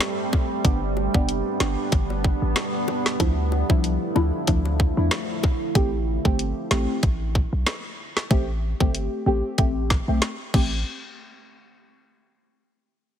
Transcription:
Already playing: G3 A3 C4
0.00 snare, closed hi-hat, high bongo
0.33 kick, high bongo, low bongo
0.64 G1 B3 D4 G4, kick, closed hi-hat
0.97 high bongo
1.14 F1 B3 D4 G4, kick
1.29 closed hi-hat
1.60 G1 B3 D4 G4, snare, high bongo, low bongo
1.92 G1, kick, closed hi-hat, high bongo
2.10 high bongo
2.24 kick
2.42 A1
2.56 snare, closed hi-hat, high bongo
2.88 high bongo, low bongo
3.06 snare
3.20 D2 D3 F3 A3 D4 E4, kick, closed hi-hat
3.52 high bongo
3.69 C2 F3 D4 E4, kick
3.84 closed hi-hat
4.15 D2 F3 D4 E4, high bongo, low bongo
4.47 D2 F3 D4 E4, kick, closed hi-hat, high bongo
4.65 high bongo
4.80 kick
4.97 E2 F3 D4 E4
5.11 cross-stick, snare, closed hi-hat, high bongo
5.43 kick, high bongo, low bongo
5.75 A1 A3 C4 G4, kick, closed hi-hat
6.25 G1 A3 C4 G4, kick
6.39 closed hi-hat
6.71 A1 A3 C4 G4, snare
7.03 A1, kick, closed hi-hat
7.35 kick
7.53 B1
7.67 snare, closed hi-hat
8.17 snare
8.30 A1 A3 C4 G4, kick, closed hi-hat
8.80 G1 A3 C4 G4, kick
8.95 closed hi-hat
9.26 A1 A3 C4 G4
9.58 A1 A3 C4 G4, kick, closed hi-hat
9.90 kick, snare
10.08 B1 A3 C4 G4
10.22 snare, closed hi-hat
10.54 A1 A3 C4 G4, kick, crash

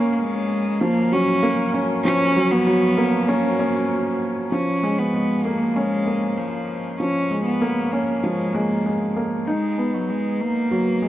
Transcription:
Already playing: A#3 C#4
0.12 A#3
0.20 G#3
0.81 F3 A#3
1.12 F#3 C#4
1.43 A#3
1.74 C#4
2.04 F3 C#4
2.36 F#3
2.51 B3
2.67 F#3
2.98 A#3
3.28 A#3 C#4
3.59 C#4
4.52 F3 C#4
4.83 G#3
4.98 B3
5.14 G#3
5.45 A#3
5.75 G#3 C#4
6.07 A#3
6.37 F3
6.99 F3 C#4
7.31 G#3
7.45 B3
7.61 A#3
7.91 A#3 C#4
8.23 F3 G#3
8.54 G#3 A#3
8.86 G#3
9.16 A#3
9.47 G#3 D#4
9.78 B3
9.94 F#3
10.10 G#3
10.40 A#3
10.71 F#3
11.02 G#3

